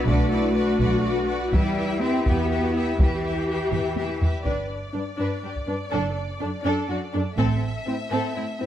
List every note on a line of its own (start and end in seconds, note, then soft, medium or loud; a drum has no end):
0.00 1.35 D4 medium
0.00 1.35 F#4 medium
0.06 0.69 B1 medium
0.06 1.26 A3 medium
0.06 0.32 D4 medium
0.06 0.31 F#4 medium
0.06 0.31 B4 medium
0.06 0.28 D5 medium
0.06 taiko medium
0.29 0.55 E4 medium
0.29 0.56 F#4 soft
0.29 0.55 B4 soft
0.29 0.53 D5 medium
0.54 1.51 F#4 medium
0.54 0.79 F#4 soft
0.54 0.79 B4 medium
0.54 0.78 D5 soft
0.79 1.42 B1 medium
0.79 1.04 F#4 medium
0.79 1.04 B4 soft
0.79 1.01 D5 medium
0.79 taiko medium
1.02 1.29 F#4 soft
1.02 1.28 B4 soft
1.02 1.26 D5 soft
1.27 1.54 F#4 soft
1.27 1.53 B4 soft
1.27 1.52 D5 soft
1.52 2.15 E2 medium
1.52 1.99 G3 medium
1.52 4.17 E4 medium
1.52 2.26 E4 medium
1.52 4.17 G4 medium
1.52 1.77 G4 medium
1.52 1.77 B4 medium
1.52 1.75 E5 soft
1.52 taiko medium
1.76 2.01 G4 soft
1.76 2.01 B4 soft
1.76 2.01 E5 soft
2.02 2.27 C4 medium
2.02 2.26 G4 soft
2.02 2.26 B4 soft
2.02 2.24 E5 soft
2.25 2.88 E2 medium
2.25 2.99 B3 medium
2.25 2.50 G4 soft
2.25 2.49 G4 soft
2.25 2.50 B4 soft
2.25 2.48 E5 soft
2.25 taiko medium
2.49 2.74 F#4 soft
2.49 2.75 G4 soft
2.49 2.74 B4 soft
2.49 2.73 E5 soft
2.73 2.99 E4 soft
2.73 2.98 G4 soft
2.73 2.99 B4 soft
2.73 2.99 E5 soft
2.99 3.61 E2 soft
2.99 4.19 E3 medium
2.99 4.09 G4 soft
2.99 3.23 G4 soft
2.99 3.23 B4 soft
2.99 3.23 E5 soft
2.99 taiko medium
3.24 3.48 G4 soft
3.24 3.48 B4 soft
3.24 3.47 E5 soft
3.48 3.72 G4 soft
3.48 3.72 B4 soft
3.48 3.70 E5 soft
3.71 4.34 E2 soft
3.71 3.96 G4 soft
3.71 3.96 B4 soft
3.71 3.95 E5 soft
3.71 taiko low-mid medium
3.96 4.21 G4 soft
3.96 4.21 B4 soft
3.96 4.19 E5 soft
3.96 taiko high medium
4.20 4.46 G4 soft
4.20 4.44 B4 soft
4.20 4.45 E5 soft
4.20 taiko low medium
4.45 4.69 G1 soft
4.45 4.54 G2 soft
4.45 4.68 D4 soft
4.45 4.68 B4 soft
4.45 7.34 D5 soft
4.45 taiko soft
4.93 5.02 G2 soft
4.93 5.01 D4 soft
4.93 5.03 D4 soft
4.93 5.02 D4 soft
4.93 5.03 B4 soft
5.18 5.27 G2 soft
5.18 5.41 D4 soft
5.18 5.42 B4 soft
5.43 5.51 G2 soft
5.43 5.52 D4 soft
5.43 5.52 G4 soft
5.56 taiko soft
5.66 5.75 G2 soft
5.66 5.75 D4 soft
5.66 5.76 D4 soft
5.66 5.75 B4 soft
5.91 6.15 F#1 soft
5.91 6.00 F#2 soft
5.91 6.14 D4 medium
5.91 6.14 A4 medium
6.40 6.49 F#2 soft
6.40 6.48 D4 soft
6.40 6.50 D4 soft
6.40 6.49 A4 soft
6.63 6.73 F#2 medium
6.63 6.87 D4 medium
6.63 6.88 A4 medium
6.88 6.98 F#2 soft
6.88 6.96 D4 soft
6.88 6.98 F#4 soft
7.14 7.22 F#2 soft
7.14 7.22 D4 soft
7.14 7.23 D4 medium
7.14 7.22 A4 medium
7.37 7.60 A1 medium
7.37 7.47 A2 medium
7.37 7.61 C4 medium
7.37 7.61 A4 medium
7.37 8.66 E5 medium
7.37 taiko medium
7.86 7.95 A2 soft
7.86 7.94 C4 soft
7.86 7.95 C4 medium
7.86 7.95 C4 soft
7.86 7.95 E4 medium
8.11 8.20 A2 medium
8.11 8.34 C4 medium
8.11 8.34 A4 medium
8.36 8.44 A2 soft
8.36 8.44 C4 soft
8.36 8.45 E4 soft
8.59 8.66 A2 soft
8.59 8.66 C4 soft
8.59 8.66 E4 soft